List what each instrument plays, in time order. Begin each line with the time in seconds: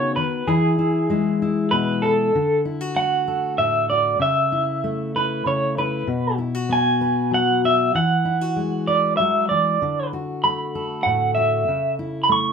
Already playing: steel-string acoustic guitar C#3 D#3 B3 D#4 F#4 B4, clean electric guitar C#5
0.16 steel-string acoustic guitar D#3, clean electric guitar B4
0.47 steel-string acoustic guitar E3 E4, clean electric guitar G#4
0.78 steel-string acoustic guitar E4
1.10 steel-string acoustic guitar G#3 E4
1.42 steel-string acoustic guitar E4
1.71 steel-string acoustic guitar B2, clean electric guitar B4
2.02 steel-string acoustic guitar G#4, clean electric guitar A4
2.35 steel-string acoustic guitar D3
2.65 steel-string acoustic guitar E4
2.81 steel-string acoustic guitar F#4
2.96 steel-string acoustic guitar A3, clean electric guitar F#5
3.28 steel-string acoustic guitar A4
3.58 steel-string acoustic guitar A2, clean electric guitar E5
3.90 steel-string acoustic guitar F#4, clean electric guitar D5
4.19 steel-string acoustic guitar C#3, clean electric guitar E5
4.52 steel-string acoustic guitar E4
4.84 steel-string acoustic guitar A3
5.16 steel-string acoustic guitar E4, clean electric guitar B4
5.46 steel-string acoustic guitar C#3, clean electric guitar C#5
5.78 steel-string acoustic guitar E4, clean electric guitar B4
6.07 steel-string acoustic guitar B2
6.38 steel-string acoustic guitar E4
6.55 steel-string acoustic guitar F#4
6.69 steel-string acoustic guitar B3, clean electric guitar G#5
7.01 steel-string acoustic guitar B4
7.31 steel-string acoustic guitar F#3, clean electric guitar F#5
7.64 steel-string acoustic guitar F#4, clean electric guitar E5
7.95 steel-string acoustic guitar E3, clean electric guitar F#5
8.25 steel-string acoustic guitar E4
8.41 steel-string acoustic guitar F#4
8.56 steel-string acoustic guitar G#3
8.87 steel-string acoustic guitar B4, clean electric guitar D5
9.17 steel-string acoustic guitar F#3, clean electric guitar E5
9.49 steel-string acoustic guitar E3, clean electric guitar D5
9.82 steel-string acoustic guitar D3
10.13 steel-string acoustic guitar F#4
10.44 steel-string acoustic guitar A3, clean electric guitar B5
10.75 steel-string acoustic guitar A4
11.03 steel-string acoustic guitar A2, clean electric guitar F#5
11.35 steel-string acoustic guitar F#4, clean electric guitar E5
11.68 steel-string acoustic guitar C#3
11.99 steel-string acoustic guitar E4
12.24 clean electric guitar B5
12.29 steel-string acoustic guitar A3, clean electric guitar C#6